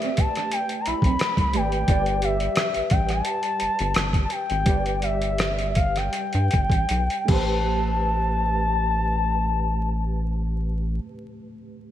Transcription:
Already playing: tine electric piano A3 G4 B4 D5, soft synth lead E5
0.02 clean electric guitar C4, closed hi-hat
0.17 soft synth lead A5, muted clean electric guitar stroke, kick, closed hi-hat
0.35 clean electric guitar D4, cross-stick, closed hi-hat
0.51 soft synth lead G5, muted clean electric guitar stroke, closed hi-hat
0.69 closed hi-hat
0.80 soft synth lead A#5
0.86 analog synth bass B1, clean electric guitar E4, soft synth lead B5, closed hi-hat
1.02 analog synth bass B1, clean electric guitar C4, kick, closed hi-hat
1.19 cross-stick, closed hi-hat
1.37 analog synth bass C2, kick, closed hi-hat
1.53 analog synth bass G#1, tine electric piano A3 G4 B4 D5, clean electric guitar A3, soft synth lead G5, closed hi-hat
1.72 closed hi-hat
1.87 analog synth bass G1, tine electric piano G3 G4 B4 D5, kick, closed hi-hat
2.06 closed hi-hat
2.22 soft synth lead E5, closed hi-hat
2.40 closed hi-hat
2.56 cross-stick, closed hi-hat
2.74 analog synth bass A1, closed hi-hat
2.90 analog synth bass A1, soft synth lead G5, kick, closed hi-hat
3.09 soft synth lead A5, cross-stick, closed hi-hat
3.25 closed hi-hat
3.43 closed hi-hat
3.60 analog synth bass G1, closed hi-hat
3.79 analog synth bass G1, closed hi-hat
3.94 analog synth bass G1, cross-stick, closed hi-hat
4.13 kick, closed hi-hat
4.25 soft synth lead A5
4.30 soft synth lead G5, closed hi-hat
4.50 analog synth bass G#1, closed hi-hat
4.65 analog synth bass G1, tine electric piano G3 G4 B4, kick, closed hi-hat
4.69 tine electric piano D5
4.86 closed hi-hat
5.02 soft synth lead E5, closed hi-hat
5.22 closed hi-hat
5.38 cross-stick, closed hi-hat
5.59 closed hi-hat
5.75 soft synth lead F5, kick, closed hi-hat
5.96 soft synth lead G5, cross-stick, closed hi-hat
6.13 closed hi-hat
6.33 analog synth bass G2, closed hi-hat
6.51 analog synth bass G1, kick, closed hi-hat
6.70 analog synth bass A1, kick, closed hi-hat
6.89 analog synth bass B1, closed hi-hat
7.10 closed hi-hat
7.25 tine electric piano A3 G4, kick, crash
7.29 analog synth bass A1, tine electric piano B4, soft synth lead A5
7.33 tine electric piano C5

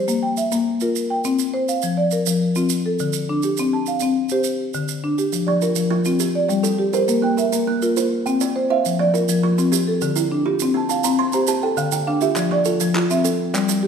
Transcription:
Already playing: marimba C5
0.08 marimba A#3, maracas
0.23 marimba G5
0.37 marimba E5, maracas
0.52 marimba A#3, maracas
0.81 marimba F4 A#4, maracas
0.96 maracas
1.10 marimba G5
1.24 marimba C4, maracas
1.39 maracas
1.54 marimba C5
1.68 marimba F5, maracas
1.82 marimba F3, maracas
1.97 marimba D5
2.11 marimba A#4, maracas
2.26 marimba F3, maracas
2.55 marimba C4 F4, maracas
2.69 maracas
2.86 marimba A4
2.99 marimba D3, maracas
3.13 maracas
3.29 marimba D4
3.43 marimba G4, maracas
3.57 marimba C4, maracas
3.73 marimba A5
3.86 marimba F5, maracas
4.00 marimba C4, maracas
4.29 marimba G4 C5, maracas
4.44 maracas
4.74 marimba D3, maracas
4.88 maracas
5.04 marimba D4
5.18 marimba G4, maracas
5.33 marimba F3, maracas
5.47 kalimba F3, marimba D5
5.62 kalimba F4, marimba A#4, maracas
5.75 marimba F3, maracas
5.91 kalimba F3 F4
6.05 marimba C4 F4, maracas
6.20 kalimba C4 G4, maracas
6.35 marimba D5
6.49 marimba G3, kalimba D5, maracas
6.63 kalimba G3 A4, maracas
6.79 marimba G4
6.93 kalimba G4 A#4, marimba C5, maracas
7.08 marimba A#3, maracas
7.22 kalimba A#3, marimba G5
7.37 kalimba A#4, marimba E5, maracas
7.53 marimba A#3, maracas
7.67 kalimba A#3
7.82 marimba F4 A#4, maracas
7.97 kalimba F4 C5, maracas
8.26 marimba C4, kalimba G5, maracas
8.41 kalimba C4 D5, maracas
8.56 marimba C5
8.70 kalimba C5 E5, marimba F5
8.85 marimba F3, maracas
8.99 kalimba F3, marimba D5
9.14 kalimba F4, marimba A#4, maracas
9.29 marimba F3, maracas
9.43 kalimba F3 F4
9.58 marimba C4 F4, maracas
9.72 kalimba C4 G4, maracas
9.87 marimba A4
10.01 marimba D3, kalimba A4, maracas
10.16 kalimba D3 E4, maracas
10.32 marimba D4
10.46 kalimba D4 F4, marimba G4
10.60 marimba C4, maracas
10.74 kalimba C4, marimba A5
10.89 marimba F5, kalimba A5, maracas
11.04 marimba C4, kalimba A#5, maracas
11.19 kalimba C4 C6
11.33 marimba G4 C5, kalimba A#5, maracas
11.47 kalimba G4 A5, maracas
11.63 marimba A4, kalimba G5
11.77 marimba D3, kalimba F5, maracas
11.92 kalimba D3 G5, maracas
12.07 marimba D4, kalimba F5
12.21 kalimba F4 E5, marimba G4, maracas
12.36 marimba F3, kalimba D5, clap, maracas
12.51 kalimba F3, marimba D5, clap
12.65 marimba F4, kalimba A4, maracas
12.80 marimba F3, clap, maracas
12.95 kalimba F3 F4, marimba F4, clap
13.10 marimba C4 E5, maracas
13.24 kalimba C4 A4, maracas
13.54 marimba G3, kalimba D5, clap, maracas
13.69 kalimba G3, clap, maracas
13.83 marimba G4

